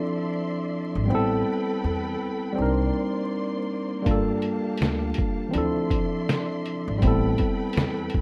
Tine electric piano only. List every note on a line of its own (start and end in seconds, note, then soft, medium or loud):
0.00 1.06 F3 medium
0.00 1.07 C4 medium
0.00 1.08 D4 medium
0.00 1.09 E4 medium
0.00 1.10 A4 medium
1.05 2.52 G3 medium
1.05 2.54 B3 medium
1.10 2.54 C4 medium
1.10 2.56 E4 medium
1.15 2.57 A4 loud
2.53 4.00 G3 medium
2.53 4.02 C4 medium
2.57 4.03 D4 medium
2.57 4.04 D#4 medium
2.62 4.05 A#4 medium
4.02 5.49 G3 medium
4.02 5.50 A#3 medium
4.07 5.51 D4 medium
4.07 5.53 F4 medium
4.11 5.54 A4 medium
5.49 5.59 E3 medium
5.49 6.98 C4 medium
5.53 7.00 F3 medium
5.53 6.99 D4 medium
5.53 7.00 E4 medium
5.58 7.01 A4 medium
6.98 8.21 G3 medium
6.98 8.21 B3 medium
7.03 8.21 C4 medium
7.03 8.21 E4 medium
7.07 8.21 A4 medium